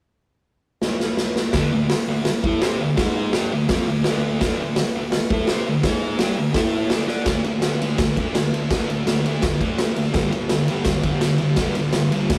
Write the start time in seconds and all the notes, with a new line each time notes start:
0.82 snare
1.00 snare
1.17 snare
1.36 snare
1.53 D3 A3 D4, kick, snare, open hi-hat
1.73 D3 A3
1.90 snare, open hi-hat
2.08 D3 A3
2.25 snare, open hi-hat
2.43 A3 E4 A4, kick
2.62 C4 G4 C5, snare, open hi-hat
2.80 D3 A3
2.97 G#3 D#4 G#4, kick, snare, open hi-hat
3.33 G3 D4 G4, snare, open hi-hat
3.53 D3 A3
3.69 F3 C4 F4, kick, snare, open hi-hat
3.88 D3 A3
4.04 D3 A3, snare, open hi-hat
4.08 D4
4.41 D3 A3 D4, kick, snare, open hi-hat
4.61 D3 A3
4.76 snare, open hi-hat
4.95 D3 A3
5.12 snare, open hi-hat
5.30 A3 E4 A4, kick
5.47 C4 G4, snare, open hi-hat
5.52 C5
5.67 D3 A3
5.83 G#3 D#4 G#4, kick, snare, open hi-hat
6.19 G3 D4 G4, snare, open hi-hat
6.38 D3 A3
6.54 A3 E4 A4, kick, snare, open hi-hat
6.90 D3 A3 D4, snare, open hi-hat
7.08 D4 A4 D5, snare
7.25 D3 A3 D4, kick, snare, ride
7.44 D3 A3, ride
7.62 D3 A3, snare, ride
7.81 D3 A3 D4, ride
7.98 D3 A3, kick, snare, ride
8.16 D3 A3 D4, kick, ride
8.34 D3 A3, snare, ride
8.53 D3 A3, ride
8.71 D3 A3 D4, kick, snare, ride
8.88 D3 A3, ride
9.07 D3 A3, snare, ride
9.26 D3 A3 D4, ride
9.42 D3 A3, kick, snare, ride
9.61 D3 A3 D4, kick, ride
9.79 D3 A3, snare, ride
9.96 D3 A3, ride
10.13 G2 D3 G3, kick, snare, ride
10.32 G2 D3, ride
10.49 G2 D3, snare, ride
10.68 G2 D3 G3, ride
10.85 G2 D3, kick, snare, ride
11.03 G2 D3 G3, kick, ride
11.21 G2 D3, snare, ride
11.38 G2 D3, ride
11.56 G2 D3 G3, kick, snare, ride
11.75 G2 D3, ride
11.93 G2 D3, snare, ride
12.12 G2 D3 G3, ride
12.29 D3 A3 D4, kick, snare, ride